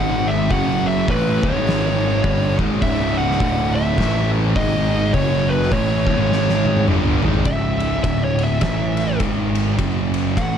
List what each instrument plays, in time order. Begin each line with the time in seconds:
Already playing: picked electric bass G#1, distorted electric guitar G#2 D#3 G#3, lead electric guitar F#5
0.28 lead electric guitar E5
0.49 picked electric bass F#1, distorted electric guitar F#2 C#3 F#3, lead electric guitar F#5, kick, open hi-hat
0.87 lead electric guitar E5
1.08 picked electric bass A1, distorted electric guitar A2 E3 A3, lead electric guitar B4, kick, open hi-hat
1.43 picked electric bass D1, distorted electric guitar D2 A2, lead electric guitar C#5, kick
1.54 picked electric bass G#1, distorted electric guitar G#2 D#3 G#3
1.67 snare, open hi-hat
2.24 picked electric bass G1, distorted electric guitar G2 D3 G3, kick, open hi-hat
2.59 picked electric bass G#1, distorted electric guitar G#2 D#3 G#3, kick
2.81 picked electric bass C#1, distorted electric guitar C#2 G#2 C#3, lead electric guitar E5, kick, open hi-hat
3.18 lead electric guitar F#5
3.31 snare
3.40 picked electric bass D1, distorted electric guitar D2 A2 D3, kick, open hi-hat
3.75 lead electric guitar E5
3.98 picked electric bass A1, distorted electric guitar A2 E3 A3, kick, snare, open hi-hat
4.56 picked electric bass G#1, distorted electric guitar G#2 D#3 G#3, lead electric guitar D#5, kick, open hi-hat
5.13 picked electric bass F#1, distorted electric guitar F#2 C#3 F#3, lead electric guitar C#5, kick, open hi-hat
5.49 lead electric guitar B4
5.63 snare
5.72 picked electric bass A1, distorted electric guitar A2 E3 A3, lead electric guitar C#5, kick, open hi-hat
6.06 picked electric bass D1, distorted electric guitar D2 A2, kick
6.18 picked electric bass G#1, distorted electric guitar G#2 D#3 G#3
6.32 snare
6.49 snare
6.65 high tom
6.77 high tom
6.88 picked electric bass G1, distorted electric guitar G2 D3 G3, mid tom
7.05 mid tom
7.22 picked electric bass G#1, distorted electric guitar G#2 D#3 G#3, floor tom
7.34 floor tom
7.45 picked electric bass C#1, distorted electric guitar C#2 G#2 C#3, lead electric guitar E5, kick, ride
7.80 ride
8.04 picked electric bass D1, distorted electric guitar D2 A2 D3, lead electric guitar E5, kick, ride
8.24 lead electric guitar C#5
8.39 ride
8.44 lead electric guitar E5
8.61 picked electric bass A1, distorted electric guitar A2 E3 A3, lead electric guitar E5, kick, snare, ride
8.97 snare, ride
9.20 picked electric bass G#1, distorted electric guitar G#2 D#3 G#3, kick, ride
9.55 ride
9.78 picked electric bass F#1, distorted electric guitar F#2 C#3 F#3, kick, ride
10.14 ride
10.37 picked electric bass A1, distorted electric guitar A2 E3 A3, lead electric guitar F#5, kick, ride